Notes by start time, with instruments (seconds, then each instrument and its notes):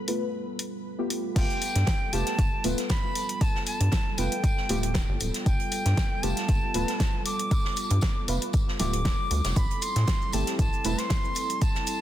Already playing: analog synth pad G3 B3 F4 A4, string machine B4 B5
0.07 synth stab A3 B3 F4 B4, open hi-hat
0.59 open hi-hat
0.98 synth stab A3 B3 F4 G4
1.10 open hi-hat
1.35 analog synth bass G1, analog synth pad G3 B3 F4 A4, synth stab A3 B3 F4 G4, flute G5, kick, closed hi-hat, crash, tambourine
1.50 closed hi-hat
1.62 open hi-hat, tambourine
1.76 analog synth bass G2, snare, closed hi-hat
1.86 kick, snare, closed hi-hat, tambourine
2.13 analog synth bass F1, synth stab A3 B3 F4 G4, flute A5, open hi-hat, tambourine
2.26 snare, closed hi-hat
2.38 analog synth bass G1, kick, closed hi-hat, tambourine
2.64 analog synth bass D1, synth stab A3 B3 F4 B4, open hi-hat, tambourine
2.78 snare, closed hi-hat
2.89 flute B5, kick, snare, closed hi-hat, tambourine
3.15 open hi-hat, tambourine
3.29 closed hi-hat
3.41 flute A5, kick, closed hi-hat, tambourine
3.55 snare
3.66 flute A5, open hi-hat, tambourine
3.80 analog synth bass G2, closed hi-hat
3.92 kick, snare, closed hi-hat, tambourine
4.18 analog synth bass F1, synth stab A3 B3 F4 B4, flute G5, open hi-hat, tambourine
4.32 closed hi-hat
4.44 kick, closed hi-hat, tambourine
4.57 snare
4.69 analog synth bass D1, synth stab A3 B3 F4 G4, open hi-hat, tambourine
4.83 closed hi-hat
4.94 kick, snare, closed hi-hat, tambourine
5.09 analog synth bass G1
5.20 analog synth bass D1, open hi-hat, tambourine
5.34 snare, closed hi-hat
5.46 analog synth bass G1, flute G5, kick, closed hi-hat, tambourine
5.60 closed hi-hat
5.71 open hi-hat, tambourine
5.85 analog synth bass G2, snare, closed hi-hat
5.97 kick, snare, closed hi-hat, tambourine
6.23 analog synth bass F1, synth stab A3 B3 F4 G4, flute A5, open hi-hat, tambourine
6.37 snare, closed hi-hat
6.48 analog synth bass G1, kick, closed hi-hat, tambourine
6.74 analog synth bass D1, synth stab A3 B3 F4 B4, open hi-hat, tambourine
6.88 snare, closed hi-hat
7.00 kick, snare, closed hi-hat, tambourine
7.25 flute D6, open hi-hat, tambourine
7.39 closed hi-hat
7.51 kick, closed hi-hat, tambourine
7.65 snare
7.76 open hi-hat, tambourine
7.90 analog synth bass G2, closed hi-hat
8.01 kick, snare, closed hi-hat, tambourine
8.28 analog synth bass F1, synth stab A3 B3 F4 B4, open hi-hat, tambourine
8.42 closed hi-hat
8.53 kick, closed hi-hat, tambourine
8.68 snare
8.79 analog synth bass D1, synth stab A3 B3 F4 G4, flute D6, snare, open hi-hat, tambourine
8.93 closed hi-hat
9.05 kick, snare, closed hi-hat, tambourine
9.31 analog synth bass D2, open hi-hat, tambourine
9.44 analog synth bass F1, snare, closed hi-hat, tambourine
9.56 analog synth bass A1, analog synth pad G3 C4 E4 A4, flute B5, kick, closed hi-hat, tambourine, shaker
9.71 closed hi-hat, shaker
9.82 flute C6, open hi-hat, tambourine, shaker
9.96 analog synth bass A2, snare, closed hi-hat, shaker
10.07 kick, snare, closed hi-hat, tambourine, shaker
10.22 shaker
10.32 analog synth bass G1, synth stab A3 C4 E4 G4, flute A5, open hi-hat, tambourine, shaker
10.47 snare, closed hi-hat, shaker
10.59 analog synth bass A1, flute A5, kick, closed hi-hat, tambourine, shaker
10.73 shaker
10.84 analog synth bass E1, synth stab A3 C4 E4 B4, open hi-hat, tambourine, shaker
10.98 flute C6, snare, closed hi-hat, shaker
11.10 kick, snare, closed hi-hat, tambourine, shaker
11.24 shaker
11.35 open hi-hat, tambourine, shaker
11.50 closed hi-hat, shaker
11.62 flute A5, kick, closed hi-hat, tambourine, shaker
11.75 snare, shaker
11.87 open hi-hat, tambourine, shaker